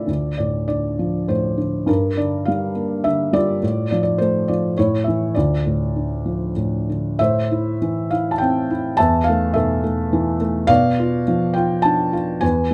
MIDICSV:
0, 0, Header, 1, 2, 480
1, 0, Start_track
1, 0, Key_signature, -1, "minor"
1, 0, Tempo, 601202
1, 68, Time_signature, 3, 2, 24, 8
1, 1505, Tempo, 579151
1, 4865, Tempo, 612870
1, 5846, Key_signature, 0, "minor"
1, 6785, Tempo, 576923
1, 10403, End_track
2, 0, Start_track
2, 0, Title_t, "Felt piano"
2, 0, Program_c, 0, 0
2, 0, Control_c, 0, 64, 127
2, 0, Note_on_c, 0, 45, 47
2, 0, Note_on_c, 0, 52, 34
2, 0, Note_on_c, 0, 57, 34
2, 0, Note_on_c, 0, 64, 49
2, 0, Note_on_c, 0, 65, 39
2, 0, Note_on_c, 0, 73, 44
2, 0, Note_on_c, 0, 74, 64
2, 0, Note_on_c, 0, 76, 58
2, 57, Note_on_c, 0, 38, 41
2, 77, Control_c, 0, 64, 0
2, 81, Note_off_c, 0, 57, 0
2, 81, Note_off_c, 0, 64, 0
2, 81, Note_off_c, 0, 73, 0
2, 82, Note_off_c, 0, 76, 0
2, 83, Note_off_c, 0, 45, 0
2, 83, Note_off_c, 0, 52, 0
2, 236, Control_c, 0, 64, 127
2, 289, Note_off_c, 0, 74, 0
2, 301, Note_on_c, 0, 74, 51
2, 311, Note_on_c, 0, 45, 32
2, 528, Note_off_c, 0, 74, 0
2, 529, Note_off_c, 0, 65, 0
2, 540, Note_on_c, 0, 74, 56
2, 547, Note_on_c, 0, 50, 32
2, 790, Note_on_c, 0, 53, 33
2, 1015, Note_off_c, 0, 45, 0
2, 1025, Note_on_c, 0, 72, 56
2, 1027, Note_on_c, 0, 45, 37
2, 1042, Note_off_c, 0, 74, 0
2, 1247, Note_off_c, 0, 50, 0
2, 1259, Note_on_c, 0, 50, 36
2, 1468, Note_off_c, 0, 38, 0
2, 1481, Note_off_c, 0, 53, 0
2, 1487, Note_off_c, 0, 45, 0
2, 1488, Note_on_c, 0, 43, 45
2, 1491, Note_off_c, 0, 50, 0
2, 1495, Note_on_c, 0, 70, 58
2, 1506, Note_on_c, 0, 62, 41
2, 1514, Control_c, 0, 64, 0
2, 1515, Note_off_c, 0, 72, 0
2, 1671, Control_c, 0, 64, 127
2, 1743, Note_on_c, 0, 74, 54
2, 1747, Note_off_c, 0, 70, 0
2, 1747, Note_on_c, 0, 50, 36
2, 1977, Note_on_c, 0, 77, 61
2, 1990, Note_off_c, 0, 74, 0
2, 1998, Note_on_c, 0, 55, 35
2, 2193, Note_off_c, 0, 62, 0
2, 2223, Note_on_c, 0, 58, 33
2, 2458, Note_off_c, 0, 50, 0
2, 2462, Note_on_c, 0, 76, 69
2, 2470, Note_on_c, 0, 50, 40
2, 2481, Note_off_c, 0, 77, 0
2, 2689, Note_off_c, 0, 55, 0
2, 2701, Note_on_c, 0, 55, 40
2, 2706, Note_on_c, 0, 74, 81
2, 2717, Note_off_c, 0, 76, 0
2, 2723, Note_on_c, 0, 65, 45
2, 2909, Note_off_c, 0, 43, 0
2, 2928, Note_off_c, 0, 58, 0
2, 2936, Note_off_c, 0, 50, 0
2, 2937, Note_off_c, 0, 55, 0
2, 2947, Note_on_c, 0, 45, 53
2, 2961, Control_c, 0, 64, 0
2, 3127, Control_c, 0, 64, 127
2, 3171, Note_off_c, 0, 74, 0
2, 3183, Note_on_c, 0, 74, 57
2, 3193, Note_on_c, 0, 53, 40
2, 3270, Note_off_c, 0, 74, 0
2, 3282, Note_on_c, 0, 74, 59
2, 3395, Note_off_c, 0, 65, 0
2, 3410, Note_on_c, 0, 72, 63
2, 3416, Note_off_c, 0, 74, 0
2, 3433, Note_on_c, 0, 57, 44
2, 3655, Note_off_c, 0, 53, 0
2, 3656, Note_on_c, 0, 74, 61
2, 3661, Note_off_c, 0, 72, 0
2, 3668, Note_on_c, 0, 53, 40
2, 3865, Note_off_c, 0, 45, 0
2, 3877, Note_off_c, 0, 74, 0
2, 3886, Note_off_c, 0, 57, 0
2, 3893, Note_off_c, 0, 53, 0
2, 3900, Note_on_c, 0, 73, 65
2, 3907, Control_c, 0, 64, 0
2, 3909, Note_on_c, 0, 64, 42
2, 3910, Note_on_c, 0, 45, 52
2, 4027, Control_c, 0, 64, 127
2, 4121, Note_on_c, 0, 76, 57
2, 4143, Note_off_c, 0, 73, 0
2, 4152, Note_on_c, 0, 52, 37
2, 4351, Note_off_c, 0, 64, 0
2, 4370, Note_off_c, 0, 45, 0
2, 4373, Note_on_c, 0, 74, 55
2, 4379, Note_off_c, 0, 52, 0
2, 4379, Note_off_c, 0, 76, 0
2, 4389, Control_c, 0, 64, 0
2, 4389, Note_on_c, 0, 65, 35
2, 4392, Note_on_c, 0, 38, 49
2, 4520, Control_c, 0, 64, 127
2, 4635, Note_on_c, 0, 45, 35
2, 4881, Note_on_c, 0, 50, 33
2, 5113, Note_on_c, 0, 53, 30
2, 5315, Note_off_c, 0, 74, 0
2, 5323, Note_off_c, 0, 65, 0
2, 5342, Note_off_c, 0, 45, 0
2, 5354, Note_on_c, 0, 45, 37
2, 5602, Note_off_c, 0, 50, 0
2, 5614, Note_on_c, 0, 50, 30
2, 5821, Note_off_c, 0, 38, 0
2, 5829, Note_off_c, 0, 53, 0
2, 5833, Note_off_c, 0, 45, 0
2, 5845, Note_off_c, 0, 50, 0
2, 5845, Note_on_c, 0, 76, 79
2, 5855, Note_on_c, 0, 45, 53
2, 5856, Control_c, 0, 64, 0
2, 5863, Note_on_c, 0, 72, 51
2, 5985, Control_c, 0, 64, 127
2, 6098, Note_on_c, 0, 64, 42
2, 6294, Note_off_c, 0, 76, 0
2, 6336, Note_on_c, 0, 52, 39
2, 6536, Note_off_c, 0, 72, 0
2, 6561, Note_off_c, 0, 64, 0
2, 6562, Note_on_c, 0, 77, 62
2, 6573, Note_on_c, 0, 64, 39
2, 6723, Note_on_c, 0, 81, 56
2, 6724, Note_off_c, 0, 77, 0
2, 6778, Note_on_c, 0, 79, 71
2, 6781, Note_off_c, 0, 81, 0
2, 6805, Note_on_c, 0, 60, 49
2, 7033, Note_off_c, 0, 64, 0
2, 7045, Note_on_c, 0, 64, 42
2, 7245, Note_off_c, 0, 45, 0
2, 7250, Note_off_c, 0, 52, 0
2, 7266, Note_on_c, 0, 81, 88
2, 7268, Note_off_c, 0, 60, 0
2, 7275, Note_off_c, 0, 64, 0
2, 7280, Note_on_c, 0, 76, 62
2, 7282, Control_c, 0, 64, 0
2, 7283, Note_off_c, 0, 79, 0
2, 7293, Note_on_c, 0, 40, 66
2, 7450, Control_c, 0, 64, 127
2, 7491, Note_on_c, 0, 77, 78
2, 7522, Note_off_c, 0, 81, 0
2, 7536, Note_on_c, 0, 57, 54
2, 7725, Note_off_c, 0, 76, 0
2, 7737, Note_on_c, 0, 76, 70
2, 7750, Note_on_c, 0, 69, 49
2, 7752, Note_off_c, 0, 77, 0
2, 7756, Note_on_c, 0, 47, 46
2, 7976, Note_off_c, 0, 57, 0
2, 7988, Note_on_c, 0, 57, 48
2, 8230, Note_on_c, 0, 52, 57
2, 8421, Note_off_c, 0, 76, 0
2, 8427, Note_off_c, 0, 69, 0
2, 8450, Note_off_c, 0, 57, 0
2, 8463, Note_on_c, 0, 57, 51
2, 8670, Note_off_c, 0, 47, 0
2, 8676, Note_off_c, 0, 40, 0
2, 8683, Note_on_c, 0, 77, 105
2, 8685, Note_off_c, 0, 52, 0
2, 8691, Note_off_c, 0, 57, 0
2, 8694, Note_on_c, 0, 47, 79
2, 8699, Note_on_c, 0, 74, 68
2, 8711, Control_c, 0, 64, 0
2, 8856, Control_c, 0, 64, 127
2, 8952, Note_on_c, 0, 65, 55
2, 9136, Note_off_c, 0, 77, 0
2, 9188, Note_on_c, 0, 53, 49
2, 9385, Note_off_c, 0, 74, 0
2, 9402, Note_on_c, 0, 79, 66
2, 9411, Note_off_c, 0, 65, 0
2, 9424, Note_on_c, 0, 65, 51
2, 9630, Note_off_c, 0, 79, 0
2, 9640, Note_on_c, 0, 81, 83
2, 9663, Note_on_c, 0, 62, 49
2, 9883, Note_off_c, 0, 65, 0
2, 9896, Note_on_c, 0, 65, 47
2, 10104, Note_off_c, 0, 47, 0
2, 10117, Note_off_c, 0, 53, 0
2, 10126, Note_on_c, 0, 80, 77
2, 10129, Note_off_c, 0, 62, 0
2, 10133, Note_off_c, 0, 65, 0
2, 10139, Note_on_c, 0, 40, 60
2, 10146, Note_off_c, 0, 81, 0
2, 10151, Control_c, 0, 64, 0
2, 10154, Note_on_c, 0, 71, 48
2, 10304, Control_c, 0, 64, 127
2, 10377, Note_on_c, 0, 56, 42
2, 10403, Note_off_c, 0, 40, 0
2, 10403, Note_off_c, 0, 56, 0
2, 10403, Note_off_c, 0, 71, 0
2, 10403, Note_off_c, 0, 80, 0
2, 10403, End_track
0, 0, End_of_file